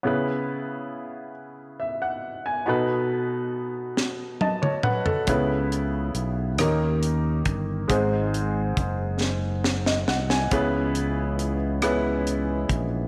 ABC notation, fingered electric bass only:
X:1
M:6/8
L:1/8
Q:3/8=46
K:C#m
V:1 name="Fingered electric bass" clef=bass
z6 | z6 | C,,2 B,,, D,,2 =G,,, | G,,,2 F,,,3 ^B,,, |
C,,4- C,, ^A,,, |]